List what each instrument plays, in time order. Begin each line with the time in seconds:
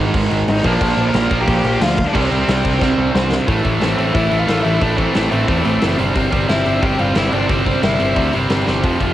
Already playing: distorted electric guitar G#2 D#3 G#3, overdriven electric guitar D#3 G#3
0.00 overdriven electric guitar G#2
0.13 picked electric bass G#1, distorted electric guitar G#2 D#3 G#3, kick, crash
0.30 picked electric bass G#1, distorted electric guitar G#2 D#3 G#3, crash
0.48 picked electric bass G#1, lead electric guitar D#4 D#5, snare, crash
0.63 picked electric bass A#1, distorted electric guitar A#2 F3 A#3, lead electric guitar D4 D5, kick, crash
0.81 picked electric bass A#1, kick, crash
0.97 picked electric bass A#1, crash
1.09 lead electric guitar A#4 A#5
1.14 picked electric bass A#1, snare, crash
1.30 picked electric bass A#1, overdriven electric guitar A#2 F3 A#3, kick, crash
1.41 lead electric guitar G4 G5
1.47 picked electric bass A#1, distorted electric guitar A#2 F3 A#3, kick, crash
1.64 picked electric bass A#1, distorted electric guitar A#2 F3 A#3, crash
1.81 picked electric bass D2, lead electric guitar F4 F5, snare, crash
1.98 kick, crash
2.07 lead electric guitar D4 D5
2.13 picked electric bass C2, distorted electric guitar C3 G3 C4, lead electric guitar C4 C5, kick, crash
2.31 picked electric bass C2, crash
2.48 picked electric bass C2, snare, crash
2.65 picked electric bass C2, kick, crash
2.80 picked electric bass C2, overdriven electric guitar C3 G3 C4, kick, snare
2.98 picked electric bass C2, distorted electric guitar C3 G3 C4
3.15 picked electric bass C2, distorted electric guitar C3 G3 C4, snare
3.32 snare
3.47 picked electric bass A1, distorted electric guitar A2 E3 A3, kick, open hi-hat
3.64 picked electric bass A1, distorted electric guitar A2 E3 A3, kick, open hi-hat
3.80 picked electric bass A1, distorted electric guitar A2 E3 A3, lead electric guitar C4 C5, snare, open hi-hat
3.98 picked electric bass A1, distorted electric guitar A2 E3 A3, open hi-hat
4.14 picked electric bass A1, distorted electric guitar A2 E3 A3, lead electric guitar E4 E5, kick, open hi-hat
4.30 picked electric bass A1, distorted electric guitar A2 E3 A3, open hi-hat
4.39 lead electric guitar F4 F5
4.48 picked electric bass A1, distorted electric guitar A2 E3 A3, snare, open hi-hat
4.63 picked electric bass A1, distorted electric guitar A2 E3 A3, lead electric guitar E4 E5, open hi-hat
4.81 picked electric bass A1, distorted electric guitar A2 E3 A3, lead electric guitar D4 D5, kick, open hi-hat
4.98 distorted electric guitar A2 E3 A3, lead electric guitar C4 C5, kick, open hi-hat
5.15 picked electric bass A1, distorted electric guitar A2 E3 A3, snare, open hi-hat
5.31 picked electric bass A1, distorted electric guitar A2 E3 A3, lead electric guitar C4 C5, open hi-hat
5.48 picked electric bass E2, distorted electric guitar A2 E3 A3, kick, open hi-hat
5.65 picked electric bass A1, distorted electric guitar A2 E3 A3, open hi-hat
5.82 picked electric bass F#1, distorted electric guitar A2 E3 A3, snare, open hi-hat
5.99 picked electric bass G1, distorted electric guitar C3 G3 C4, open hi-hat
6.15 picked electric bass G1, distorted electric guitar C3 G3 C4, kick, open hi-hat
6.33 picked electric bass G1, distorted electric guitar C3 G3 C4, kick, open hi-hat
6.49 picked electric bass G1, distorted electric guitar C3 G3 C4, lead electric guitar E4 E5, snare, open hi-hat
6.66 picked electric bass G1, distorted electric guitar C3 G3 C4, open hi-hat
6.82 picked electric bass G1, distorted electric guitar C3 G3 C4, lead electric guitar G4 G5, kick, open hi-hat
6.99 picked electric bass G1, distorted electric guitar C3 G3 C4, lead electric guitar F4 F5, open hi-hat
7.15 picked electric bass G1, distorted electric guitar C3 G3 C4, lead electric guitar E4 E5, snare, open hi-hat
7.33 picked electric bass G1, distorted electric guitar C3 G3 C4, lead electric guitar D4 D5, open hi-hat
7.49 picked electric bass G1, distorted electric guitar C3 G3 C4, lead electric guitar C4 C5, kick, open hi-hat
7.66 distorted electric guitar C3 G3 C4, kick, open hi-hat
7.83 picked electric bass G1, distorted electric guitar C3 G3 C4, lead electric guitar E4 E5, snare, open hi-hat
8.00 picked electric bass G1, distorted electric guitar C3 G3 C4, open hi-hat
8.16 picked electric bass D2, distorted electric guitar C3 G3 C4, kick, open hi-hat
8.33 picked electric bass G1, distorted electric guitar C3 G3 C4, open hi-hat
8.49 picked electric bass G1, distorted electric guitar C3 G3 C4, snare, open hi-hat
8.67 picked electric bass G1, distorted electric guitar C3 G3 C4, snare
8.82 picked electric bass F1, distorted electric guitar F2 C3 F3, kick, open hi-hat
8.99 picked electric bass F1, distorted electric guitar F2 C3 F3, kick, open hi-hat